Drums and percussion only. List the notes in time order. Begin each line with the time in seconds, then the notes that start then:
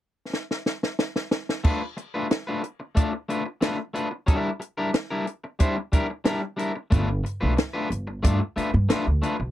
0.34 snare
0.51 snare
0.66 snare
0.83 snare
0.99 snare
1.16 snare
1.31 snare
1.49 snare
1.64 kick, crash
1.98 closed hi-hat
2.31 snare, closed hi-hat
2.64 closed hi-hat
2.97 kick, closed hi-hat
3.30 closed hi-hat
3.62 snare, closed hi-hat
3.95 closed hi-hat
4.28 kick, closed hi-hat
4.62 closed hi-hat
4.94 snare, closed hi-hat
5.27 closed hi-hat
5.60 kick, closed hi-hat
5.93 kick, closed hi-hat
6.25 snare, closed hi-hat
6.59 closed hi-hat
6.92 kick, closed hi-hat
7.26 closed hi-hat
7.58 snare, closed hi-hat
7.92 closed hi-hat
8.24 kick, closed hi-hat
8.58 closed hi-hat
8.90 snare, closed hi-hat
9.23 closed hi-hat